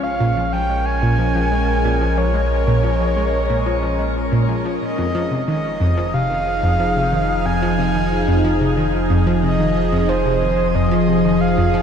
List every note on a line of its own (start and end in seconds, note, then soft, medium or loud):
0.00 4.78 A#1 medium
0.00 4.78 G#3 medium
0.00 4.78 C#4 medium
0.00 4.78 A#4 medium
0.00 0.52 F5 loud
0.20 0.32 A#2 loud
0.37 0.52 F3 medium
0.53 0.65 F3 medium
0.53 0.87 G5 loud
0.70 0.77 G#3 medium
0.86 2.19 G#5 loud
1.02 1.14 A#2 loud
1.19 1.34 F3 medium
1.35 1.47 F3 medium
1.52 1.59 G#3 medium
1.85 1.97 A#2 loud
2.01 2.16 F3 medium
2.17 2.30 F3 medium
2.17 4.16 C#5 loud
2.34 2.41 G#3 medium
2.67 2.79 A#2 loud
2.84 2.99 F3 medium
3.00 3.12 F3 medium
3.17 3.24 G#3 medium
3.50 3.62 A#2 medium
3.66 3.81 F3 medium
3.83 3.95 F3 medium
3.99 4.06 G#3 medium
4.32 4.44 A#2 loud
4.49 4.64 F3 medium
4.65 4.77 F3 medium
4.82 11.82 F1 medium
4.82 11.82 F3 medium
4.82 10.05 D#4 medium
4.82 11.82 G#4 medium
4.82 5.44 D#5 loud
4.98 5.10 F2 loud
5.15 5.22 F3 loud
5.31 5.43 C3 medium
5.47 5.55 D#3 medium
5.47 6.15 D#5 medium
5.81 5.92 F2 loud
5.97 6.04 F3 loud
6.14 6.26 C3 medium
6.14 7.47 F5 loud
6.30 6.37 D#3 medium
6.63 6.75 F2 loud
6.80 6.87 F3 medium
6.96 7.08 C3 medium
7.12 7.20 D#3 medium
7.46 7.57 F2 loud
7.46 7.79 G#5 loud
7.62 7.69 F3 loud
7.79 7.90 C3 medium
7.79 8.41 G#5 loud
7.95 8.02 D#3 medium
8.28 8.40 F2 loud
8.45 8.52 F3 loud
8.61 8.73 C3 medium
8.77 8.84 D#3 medium
9.10 9.22 F2 loud
9.27 9.34 F3 loud
9.43 9.55 C3 medium
9.43 10.11 D#5 loud
9.60 9.67 D#3 medium
9.92 10.04 F2 loud
10.09 10.16 F3 loud
10.09 11.82 F4 medium
10.09 10.77 C5 loud
10.25 10.37 C3 medium
10.42 10.49 D#3 medium
10.75 10.87 F2 loud
10.75 11.42 D#5 loud
10.91 10.99 F3 loud
11.08 11.20 C3 medium
11.25 11.32 D#3 medium
11.41 11.82 F5 loud
11.58 11.69 F2 loud
11.74 11.81 F3 loud